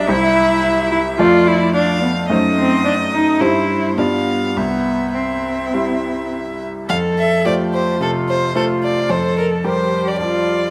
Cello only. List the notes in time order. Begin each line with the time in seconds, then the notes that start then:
0.07 E4
0.91 E4
1.19 F4
1.47 E4
1.75 D4
2.02 B3
2.29 A3
2.58 C4
2.85 D4
3.12 D#4
3.40 E4
3.96 B3
4.56 B3
5.14 C4
6.88 A4
7.44 G4
8.00 F4
8.55 F4
9.10 A4
9.65 G4
10.20 F4